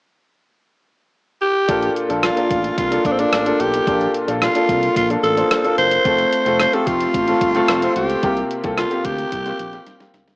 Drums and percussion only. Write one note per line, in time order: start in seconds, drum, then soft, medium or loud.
1.69 kick medium
1.69 closed hi-hat medium
1.83 closed hi-hat soft
1.96 closed hi-hat medium
2.10 closed hi-hat soft
2.23 cross-stick medium
2.23 closed hi-hat medium
2.37 closed hi-hat soft
2.51 kick medium
2.51 closed hi-hat medium
2.64 closed hi-hat medium
2.78 kick medium
2.78 closed hi-hat medium
2.92 closed hi-hat soft
3.05 kick medium
3.05 closed hi-hat medium
3.19 closed hi-hat soft
3.33 cross-stick loud
3.33 closed hi-hat medium
3.46 closed hi-hat soft
3.60 closed hi-hat medium
3.74 closed hi-hat soft
3.87 kick medium
3.87 closed hi-hat medium
4.01 closed hi-hat soft
4.14 closed hi-hat medium
4.28 closed hi-hat soft
4.42 cross-stick medium
4.42 closed hi-hat medium
4.55 closed hi-hat medium
4.69 kick medium
4.69 closed hi-hat medium
4.83 closed hi-hat medium
4.96 kick medium
4.96 closed hi-hat medium
5.10 closed hi-hat soft
5.24 closed hi-hat medium
5.37 closed hi-hat soft
5.51 cross-stick loud
5.51 closed hi-hat medium
5.64 closed hi-hat soft
5.78 closed hi-hat medium
5.91 closed hi-hat soft
6.05 kick loud
6.05 closed hi-hat medium
6.18 closed hi-hat soft
6.33 closed hi-hat medium
6.46 closed hi-hat medium
6.60 cross-stick medium
6.60 closed hi-hat medium
6.73 closed hi-hat soft
6.87 kick medium
6.87 closed hi-hat medium
7.00 closed hi-hat medium
7.14 kick medium
7.14 closed hi-hat medium
7.28 closed hi-hat soft
7.41 kick medium
7.41 closed hi-hat medium
7.55 closed hi-hat soft
7.68 cross-stick loud
7.68 closed hi-hat medium
7.82 closed hi-hat soft
7.96 closed hi-hat medium
8.10 closed hi-hat soft
8.23 kick loud
8.23 closed hi-hat medium
8.37 closed hi-hat soft
8.51 closed hi-hat medium
8.64 kick medium
8.64 closed hi-hat soft
8.78 cross-stick medium
8.78 closed hi-hat medium
8.91 closed hi-hat soft
9.05 kick medium
9.05 closed hi-hat medium
9.19 closed hi-hat medium
9.32 kick medium
9.32 closed hi-hat medium
9.46 closed hi-hat soft
9.59 closed hi-hat medium
9.73 closed hi-hat soft
9.87 snare soft
9.87 closed hi-hat medium
10.00 snare medium
10.00 closed hi-hat soft
10.14 snare medium
10.14 closed hi-hat medium
10.28 snare medium
10.28 closed hi-hat soft